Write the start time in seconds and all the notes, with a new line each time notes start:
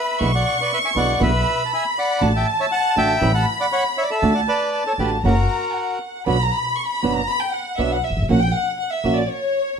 Already playing: B4 E5 B5
0.20 B1 B2 D3 G#3 B3 E4 C#6
0.35 D5 F#5
0.61 B4 D5
0.73 B4 E5
0.85 E5 G#5
0.95 B1 B2 D3 G#3 B3 E4 D5 F#5
1.20 B1 B2 D3 G#3 B3 E4 B4 E5 B5
1.65 A5
1.73 E5 G#5
1.98 D5 F#5
2.21 A1 D3 A3 D4 F#4 A5
2.36 E5 G5
2.60 C#5 E5
2.72 F#5 A5
2.96 A1 D3 A3 D4 F#4 E5 G5
3.21 A1 E3 G3 C#4 E4 B5
3.34 F#5 A5
3.60 D5 F#5
3.72 C#5 F#5
3.97 C#5 E5
4.02 D5
4.11 A4 E5
4.22 D2 D3 A3 D4 F#4 A5
4.34 D5 F#5
4.48 B4 D5
4.73 A5
4.87 A4 C#5
4.98 A1 D3 A3 D4 F#4 G4 B4
5.24 F#1 C#3 E3 A#3 C#4 F#4 A#4 A#5
5.76 F#5
6.26 B1 B2 F#3 B3 D4 F#4 B5
6.41 A#5
6.53 B5
6.78 C#6
6.90 B5
7.03 F#1 B2 F#3 B3 D4 F#4
7.15 A#5
7.28 B5
7.41 G5
7.53 F#5
7.77 B1 B2 F#3 B3 D4 F#4 E5
7.92 F#5
8.05 E5
8.10 G1
8.17 G#1
8.22 A1
8.29 A#1 A#3 C#4 F#4 F#5
8.41 G5
8.53 F#5
8.79 F#5
8.92 E5
9.04 A#1 A#3 C#4 F#4
9.15 D5
9.29 C#5